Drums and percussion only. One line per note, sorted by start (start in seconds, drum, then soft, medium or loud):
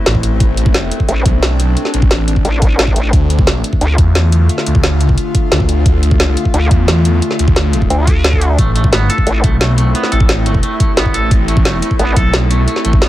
0.06 snare loud
0.06 closed hi-hat medium
0.15 kick medium
0.23 closed hi-hat loud
0.40 kick loud
0.40 closed hi-hat medium
0.57 closed hi-hat medium
0.66 kick loud
0.74 snare loud
0.74 closed hi-hat medium
0.91 closed hi-hat medium
1.00 kick medium
1.08 closed hi-hat medium
1.26 kick loud
1.26 closed hi-hat loud
1.43 snare loud
1.43 closed hi-hat medium
1.60 closed hi-hat loud
1.77 closed hi-hat medium
1.85 snare soft
1.94 closed hi-hat medium
2.02 kick loud
2.11 snare loud
2.11 closed hi-hat medium
2.28 closed hi-hat medium
2.36 kick medium
2.45 closed hi-hat medium
2.62 kick loud
2.62 closed hi-hat medium
2.79 snare loud
2.79 closed hi-hat medium
2.87 kick medium
2.96 closed hi-hat loud
3.13 kick loud
3.13 closed hi-hat medium
3.30 closed hi-hat medium
3.39 kick loud
3.47 snare loud
3.47 closed hi-hat medium
3.64 closed hi-hat medium
3.73 kick medium
3.81 closed hi-hat medium
3.98 kick loud
3.98 closed hi-hat medium
4.15 snare loud
4.15 closed hi-hat medium
4.32 closed hi-hat medium
4.49 closed hi-hat medium
4.58 snare soft
4.66 closed hi-hat medium
4.75 kick loud
4.83 snare loud
4.83 closed hi-hat medium
5.01 closed hi-hat medium
5.09 kick medium
5.18 closed hi-hat medium
5.35 kick loud
5.35 closed hi-hat medium
5.52 snare loud
5.52 closed hi-hat medium
5.60 kick medium
5.69 closed hi-hat medium
5.86 kick loud
5.86 closed hi-hat medium
6.03 closed hi-hat medium
6.11 kick loud
6.20 snare loud
6.20 closed hi-hat medium
6.37 closed hi-hat medium
6.45 kick medium
6.54 closed hi-hat medium
6.71 kick loud
6.71 closed hi-hat medium
6.88 snare loud
6.88 closed hi-hat medium
7.05 closed hi-hat medium
7.22 closed hi-hat medium
7.31 snare soft
7.39 closed hi-hat medium
7.48 kick loud
7.56 snare loud
7.56 closed hi-hat medium
7.73 closed hi-hat medium
7.82 kick medium
7.90 closed hi-hat medium
8.07 kick loud
8.07 closed hi-hat medium
8.24 snare loud
8.24 closed hi-hat medium
8.33 kick medium
8.41 closed hi-hat loud
8.59 kick loud
8.59 closed hi-hat medium
8.76 closed hi-hat medium
8.84 kick loud
8.93 snare loud
8.93 closed hi-hat medium
9.10 closed hi-hat loud
9.18 kick medium
9.27 closed hi-hat medium
9.44 kick loud
9.44 closed hi-hat loud
9.61 snare loud
9.61 closed hi-hat medium
9.78 closed hi-hat loud
9.95 closed hi-hat medium
10.03 snare soft
10.12 closed hi-hat medium
10.20 kick loud
10.29 snare loud
10.29 closed hi-hat medium
10.46 closed hi-hat loud
10.55 kick medium
10.63 closed hi-hat medium
10.80 kick loud
10.80 closed hi-hat medium
10.97 snare loud
10.97 closed hi-hat medium
11.06 kick medium
11.14 closed hi-hat loud
11.31 kick loud
11.31 closed hi-hat medium
11.48 closed hi-hat medium
11.57 kick loud
11.65 snare loud
11.65 closed hi-hat medium
11.82 closed hi-hat medium
11.91 kick medium
11.99 closed hi-hat medium
12.16 kick loud
12.16 closed hi-hat loud
12.34 snare loud
12.34 closed hi-hat medium
12.51 closed hi-hat loud
12.68 closed hi-hat medium
12.76 snare soft
12.85 closed hi-hat medium
12.93 kick loud
13.02 snare loud
13.02 closed hi-hat medium